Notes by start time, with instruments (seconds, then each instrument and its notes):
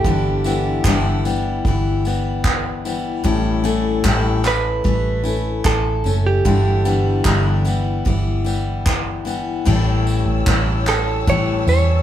Already playing: clean electric guitar G4
0.04 fingered electric bass G1, steel-string acoustic guitar G2 D3 E3 G3 B3 E4, kick
0.44 steel-string acoustic guitar G2 D3 E3 G3 B3 E4, tambourine
0.84 fingered electric bass G1, steel-string acoustic guitar G2 D3 E3 G3 B3 E4, kick, clap
1.25 steel-string acoustic guitar E3 G3 B3 E4, tambourine
1.65 fingered electric bass G1, steel-string acoustic guitar E3 G3 B3 E4, kick
2.05 steel-string acoustic guitar E3 G3 B3 E4, tambourine
2.44 kick, clap
2.85 steel-string acoustic guitar E3 G3 B3 E4, tambourine
3.24 fingered electric bass A1, steel-string acoustic guitar A2 G3 A3 C#4 E4, kick
3.64 steel-string acoustic guitar A2 G3 A3 C#4 E4, tambourine
4.04 fingered electric bass A1, steel-string acoustic guitar A2 G3 A3 C#4 E4, kick, clap
4.43 steel-string acoustic guitar A3 C#4 E4, clap, tambourine
4.48 clean electric guitar B4
4.84 fingered electric bass A1, steel-string acoustic guitar G3 A3 C#4 E4, kick
5.24 steel-string acoustic guitar A3 C#4 E4, tambourine
5.65 fingered electric bass A1, clean electric guitar A4, kick, clap
6.04 fingered electric bass F#1, steel-string acoustic guitar A3 C#4 E4, tambourine
6.26 clean electric guitar G4
6.45 fingered electric bass G1, steel-string acoustic guitar G2 D3 E3 G3 B3 E4, kick
6.85 steel-string acoustic guitar G2 D3 E3 G3 B3 E4, tambourine
7.25 fingered electric bass G1, steel-string acoustic guitar G2 D3 E3 G3 B3 E4, kick, clap
7.65 steel-string acoustic guitar E3 G3 B3 E4, tambourine
8.05 fingered electric bass G1, steel-string acoustic guitar E3 G3 B3 E4, kick
8.45 steel-string acoustic guitar E3 G3 B3 E4, tambourine
8.86 kick, clap
9.25 steel-string acoustic guitar E3 G3 B3 E4, tambourine
9.65 fingered electric bass A1, steel-string acoustic guitar A2 E3 G3 C#4 E4, string section G4 C#5 A5 E6, kick, crash
10.07 tambourine
10.26 fingered electric bass A1
10.47 fingered electric bass A1, steel-string acoustic guitar E3 G3 C#4 E4, kick, clap
10.87 steel-string acoustic guitar G3 C#4 E4, clean electric guitar A4, clap, tambourine
11.27 steel-string acoustic guitar A2 E3 G3 C#4 E4, clean electric guitar C#5, kick
11.67 fingered electric bass E2, steel-string acoustic guitar G3 C#4 E4, clean electric guitar C#5, tambourine